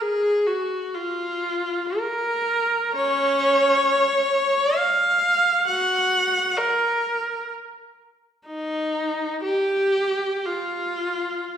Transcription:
0.01 0.48 G#4 medium
0.46 0.94 F#4 medium
0.94 2.00 F4 medium
1.99 2.96 A#4 medium
2.95 4.27 C#4 medium
2.95 4.73 C#5 medium
4.76 5.68 F5 medium
5.67 6.55 F#4 medium
5.67 6.57 F#5 medium
6.57 7.50 A#4 medium
8.46 9.39 D#4 medium
9.44 10.46 G4 medium
10.46 11.57 F4 medium

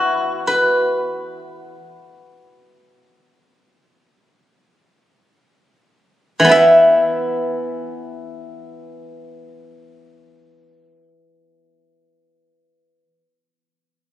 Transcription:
0.00 1.75 E3 medium
0.00 1.11 B3 medium
0.00 1.76 E4 medium
0.00 2.44 F#4 soft
0.00 4.75 E5 medium
0.47 3.17 B4 medium
6.40 13.03 E3 medium
6.45 11.73 B3 medium
6.49 10.93 E4 soft
6.49 9.62 E5 medium

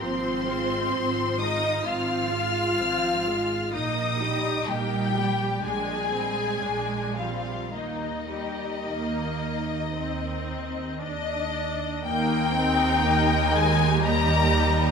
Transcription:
0.01 0.83 G#1 medium
0.01 0.45 F3 soft
0.01 0.45 C4 soft
0.01 1.40 C4 medium
0.01 1.38 C5 medium
0.01 1.37 C6 medium
0.47 0.94 G#3 soft
0.47 0.94 F4 medium
0.92 1.76 G#1 medium
0.92 1.40 F3 soft
0.92 1.40 C4 soft
1.40 1.87 G#3 soft
1.40 1.86 D#4 medium
1.40 1.87 F4 soft
1.40 1.88 D#5 medium
1.40 1.87 D#6 medium
1.86 2.68 G#1 medium
1.86 2.30 F3 medium
1.86 2.30 C4 medium
1.86 3.74 F4 medium
1.86 3.74 F5 medium
1.86 3.74 F6 medium
2.33 2.80 G#3 soft
2.33 2.79 F4 soft
2.79 3.62 G#1 medium
2.79 3.26 F3 medium
2.79 3.26 C4 medium
3.27 3.75 G#3 medium
3.27 3.74 F4 medium
3.73 4.57 A#1 medium
3.73 4.18 A#3 medium
3.73 4.68 D#4 medium
3.73 4.18 D#4 medium
3.73 4.67 D#5 medium
3.73 4.67 D#6 medium
4.21 4.69 G3 medium
4.21 4.69 G4 medium
4.68 5.53 A#1 medium
4.68 5.64 G3 medium
4.68 5.16 A#3 soft
4.68 5.16 D#4 soft
4.68 5.65 G4 medium
4.68 5.65 G5 medium
5.16 5.65 G3 soft
5.16 5.65 G4 soft
5.64 6.52 A#1 medium
5.64 7.15 G#3 medium
5.64 6.10 G#3 medium
5.64 6.10 D4 soft
5.64 7.19 G#4 medium
5.64 7.15 G#5 medium
6.14 6.65 G3 soft
6.14 6.65 C4 soft
6.64 7.61 A#1 medium
6.64 7.18 G#3 medium
6.64 7.18 D4 medium
7.17 7.74 F3 medium
7.17 7.74 G3 soft
7.17 7.74 C4 soft
7.17 7.74 F4 medium
7.17 7.73 F5 medium
7.73 8.73 D#2 medium
7.73 10.97 D#3 medium
7.73 8.27 A#3 soft
7.73 8.27 D#4 soft
7.73 10.96 D#4 medium
7.73 11.00 D#5 medium
8.31 8.87 G3 soft
8.31 8.87 G4 soft
8.86 9.83 D#2 medium
8.86 9.91 A#3 medium
9.95 10.88 D#2 medium
9.95 11.00 C4 medium
11.00 11.93 D#2 medium
11.00 12.04 D4 medium
11.00 12.01 D#5 medium
12.04 14.91 D#2 medium
12.04 12.51 A#3 medium
12.04 13.98 D#4 medium
12.04 13.97 A#4 medium
12.04 12.99 G5 medium
12.04 13.50 G5 loud
12.54 13.03 C4 medium
13.03 13.53 A#3 medium
13.03 13.99 D#5 medium
13.53 14.01 G#3 medium
13.53 14.01 G#5 loud
14.01 14.91 G3 medium
14.01 14.91 G4 medium
14.01 14.91 A#4 medium
14.01 14.91 D#5 medium
14.01 14.91 A#5 loud

